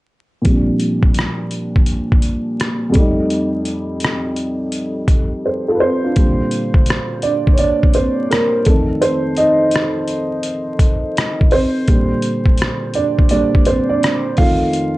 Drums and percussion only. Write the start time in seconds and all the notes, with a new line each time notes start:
0.45 kick, closed hi-hat
0.80 closed hi-hat
1.03 kick
1.14 closed hi-hat
1.19 cross-stick
1.51 closed hi-hat
1.76 kick
1.86 closed hi-hat
2.12 kick
2.22 closed hi-hat
2.60 cross-stick, closed hi-hat
2.94 kick, closed hi-hat
3.30 closed hi-hat
3.65 closed hi-hat
4.00 closed hi-hat
4.04 cross-stick
4.36 closed hi-hat
4.72 closed hi-hat
5.08 kick, closed hi-hat
6.16 kick, closed hi-hat
6.51 closed hi-hat
6.74 kick
6.86 closed hi-hat
6.90 cross-stick
7.22 closed hi-hat
7.47 kick
7.58 closed hi-hat
7.83 kick
7.94 closed hi-hat
8.31 cross-stick, closed hi-hat
8.65 kick, closed hi-hat
9.02 closed hi-hat
9.37 closed hi-hat
9.71 closed hi-hat
9.76 cross-stick
10.08 closed hi-hat
10.43 closed hi-hat
10.79 kick, closed hi-hat
11.17 cross-stick, closed hi-hat
11.41 kick
11.51 open hi-hat
11.88 kick, closed hi-hat
12.22 closed hi-hat
12.46 kick
12.57 closed hi-hat
12.62 cross-stick
12.94 closed hi-hat
13.19 kick
13.29 closed hi-hat
13.55 kick
13.65 closed hi-hat
14.03 cross-stick, closed hi-hat
14.37 kick, open hi-hat
14.73 closed hi-hat